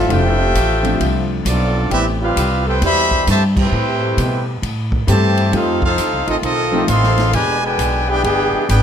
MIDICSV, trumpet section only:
0, 0, Header, 1, 2, 480
1, 0, Start_track
1, 0, Key_signature, 0, "minor"
1, 0, Tempo, 452148
1, 109, Time_signature, 4, 2, 24, 8
1, 9370, End_track
2, 0, Start_track
2, 0, Title_t, "Trumpet section"
2, 0, Program_c, 0, 61
2, 0, Note_on_c, 0, 60, 81
2, 0, Note_on_c, 0, 69, 86
2, 111, Note_off_c, 0, 69, 0
2, 112, Note_off_c, 0, 60, 0
2, 115, Note_on_c, 0, 76, 103
2, 115, Note_on_c, 0, 79, 101
2, 116, Note_on_c, 0, 72, 85
2, 117, Note_on_c, 0, 65, 94
2, 1322, Note_off_c, 0, 79, 0
2, 1323, Note_off_c, 0, 65, 0
2, 1323, Note_off_c, 0, 72, 0
2, 1323, Note_off_c, 0, 76, 0
2, 1577, Note_on_c, 0, 65, 83
2, 1579, Note_on_c, 0, 60, 74
2, 1579, Note_on_c, 0, 74, 89
2, 1580, Note_on_c, 0, 69, 76
2, 2010, Note_off_c, 0, 65, 0
2, 2011, Note_off_c, 0, 60, 0
2, 2011, Note_off_c, 0, 74, 0
2, 2012, Note_off_c, 0, 69, 0
2, 2043, Note_on_c, 0, 67, 93
2, 2044, Note_on_c, 0, 76, 105
2, 2045, Note_on_c, 0, 60, 84
2, 2048, Note_on_c, 0, 71, 83
2, 2180, Note_off_c, 0, 67, 0
2, 2181, Note_off_c, 0, 76, 0
2, 2182, Note_off_c, 0, 60, 0
2, 2184, Note_off_c, 0, 71, 0
2, 2368, Note_on_c, 0, 67, 78
2, 2368, Note_on_c, 0, 77, 97
2, 2369, Note_on_c, 0, 71, 85
2, 2371, Note_on_c, 0, 60, 85
2, 2802, Note_off_c, 0, 67, 0
2, 2802, Note_off_c, 0, 71, 0
2, 2802, Note_off_c, 0, 77, 0
2, 2803, Note_off_c, 0, 60, 0
2, 2847, Note_on_c, 0, 79, 101
2, 2848, Note_on_c, 0, 71, 86
2, 2849, Note_on_c, 0, 64, 85
2, 2851, Note_on_c, 0, 72, 89
2, 3001, Note_off_c, 0, 79, 0
2, 3002, Note_off_c, 0, 64, 0
2, 3002, Note_off_c, 0, 71, 0
2, 3003, Note_off_c, 0, 72, 0
2, 3026, Note_on_c, 0, 72, 104
2, 3028, Note_on_c, 0, 67, 96
2, 3029, Note_on_c, 0, 83, 122
2, 3032, Note_on_c, 0, 76, 104
2, 3454, Note_off_c, 0, 72, 0
2, 3456, Note_off_c, 0, 67, 0
2, 3456, Note_off_c, 0, 83, 0
2, 3458, Note_off_c, 0, 76, 0
2, 3507, Note_on_c, 0, 81, 106
2, 3508, Note_on_c, 0, 67, 86
2, 3511, Note_on_c, 0, 72, 95
2, 3512, Note_on_c, 0, 76, 91
2, 3639, Note_off_c, 0, 81, 0
2, 3640, Note_off_c, 0, 67, 0
2, 3642, Note_off_c, 0, 72, 0
2, 3643, Note_off_c, 0, 76, 0
2, 3825, Note_on_c, 0, 71, 85
2, 3828, Note_on_c, 0, 72, 82
2, 3830, Note_on_c, 0, 64, 91
2, 3831, Note_on_c, 0, 79, 100
2, 4720, Note_off_c, 0, 71, 0
2, 4722, Note_off_c, 0, 72, 0
2, 4723, Note_off_c, 0, 64, 0
2, 4723, Note_off_c, 0, 79, 0
2, 5413, Note_on_c, 0, 67, 90
2, 5415, Note_on_c, 0, 81, 104
2, 5416, Note_on_c, 0, 72, 93
2, 5416, Note_on_c, 0, 76, 88
2, 5847, Note_off_c, 0, 67, 0
2, 5848, Note_off_c, 0, 81, 0
2, 5849, Note_off_c, 0, 72, 0
2, 5849, Note_off_c, 0, 76, 0
2, 5898, Note_on_c, 0, 72, 94
2, 5899, Note_on_c, 0, 63, 90
2, 5899, Note_on_c, 0, 69, 99
2, 5899, Note_on_c, 0, 77, 101
2, 6189, Note_off_c, 0, 69, 0
2, 6193, Note_off_c, 0, 63, 0
2, 6195, Note_off_c, 0, 72, 0
2, 6196, Note_off_c, 0, 77, 0
2, 6202, Note_on_c, 0, 69, 80
2, 6205, Note_on_c, 0, 63, 86
2, 6207, Note_on_c, 0, 77, 96
2, 6209, Note_on_c, 0, 72, 84
2, 6638, Note_off_c, 0, 69, 0
2, 6640, Note_off_c, 0, 63, 0
2, 6641, Note_off_c, 0, 77, 0
2, 6642, Note_off_c, 0, 72, 0
2, 6686, Note_on_c, 0, 75, 94
2, 6687, Note_on_c, 0, 69, 82
2, 6688, Note_on_c, 0, 65, 82
2, 6689, Note_on_c, 0, 60, 90
2, 6756, Note_off_c, 0, 69, 0
2, 6756, Note_off_c, 0, 75, 0
2, 6757, Note_off_c, 0, 65, 0
2, 6758, Note_off_c, 0, 60, 0
2, 6841, Note_on_c, 0, 60, 94
2, 6842, Note_on_c, 0, 65, 90
2, 6845, Note_on_c, 0, 75, 104
2, 6846, Note_on_c, 0, 69, 91
2, 7281, Note_off_c, 0, 60, 0
2, 7282, Note_off_c, 0, 65, 0
2, 7283, Note_off_c, 0, 75, 0
2, 7284, Note_off_c, 0, 69, 0
2, 7318, Note_on_c, 0, 75, 88
2, 7319, Note_on_c, 0, 69, 90
2, 7322, Note_on_c, 0, 84, 108
2, 7324, Note_on_c, 0, 77, 96
2, 7760, Note_off_c, 0, 69, 0
2, 7760, Note_off_c, 0, 75, 0
2, 7762, Note_off_c, 0, 84, 0
2, 7763, Note_off_c, 0, 77, 0
2, 7798, Note_on_c, 0, 71, 98
2, 7799, Note_on_c, 0, 67, 98
2, 7800, Note_on_c, 0, 62, 103
2, 7801, Note_on_c, 0, 80, 114
2, 8104, Note_off_c, 0, 62, 0
2, 8104, Note_off_c, 0, 71, 0
2, 8104, Note_off_c, 0, 80, 0
2, 8106, Note_off_c, 0, 67, 0
2, 8116, Note_on_c, 0, 71, 89
2, 8116, Note_on_c, 0, 79, 90
2, 8117, Note_on_c, 0, 62, 84
2, 8117, Note_on_c, 0, 80, 97
2, 8555, Note_off_c, 0, 79, 0
2, 8556, Note_off_c, 0, 62, 0
2, 8556, Note_off_c, 0, 71, 0
2, 8556, Note_off_c, 0, 80, 0
2, 8590, Note_on_c, 0, 71, 93
2, 8591, Note_on_c, 0, 62, 94
2, 8591, Note_on_c, 0, 79, 108
2, 8594, Note_on_c, 0, 68, 88
2, 8740, Note_off_c, 0, 79, 0
2, 8741, Note_off_c, 0, 71, 0
2, 8743, Note_off_c, 0, 62, 0
2, 8744, Note_off_c, 0, 68, 0
2, 8752, Note_on_c, 0, 79, 102
2, 8754, Note_on_c, 0, 71, 95
2, 8756, Note_on_c, 0, 62, 95
2, 8757, Note_on_c, 0, 68, 99
2, 9197, Note_off_c, 0, 79, 0
2, 9198, Note_off_c, 0, 71, 0
2, 9199, Note_off_c, 0, 62, 0
2, 9199, Note_off_c, 0, 68, 0
2, 9232, Note_on_c, 0, 68, 90
2, 9232, Note_on_c, 0, 79, 110
2, 9233, Note_on_c, 0, 62, 90
2, 9234, Note_on_c, 0, 71, 88
2, 9370, Note_off_c, 0, 62, 0
2, 9370, Note_off_c, 0, 68, 0
2, 9370, Note_off_c, 0, 71, 0
2, 9370, Note_off_c, 0, 79, 0
2, 9370, End_track
0, 0, End_of_file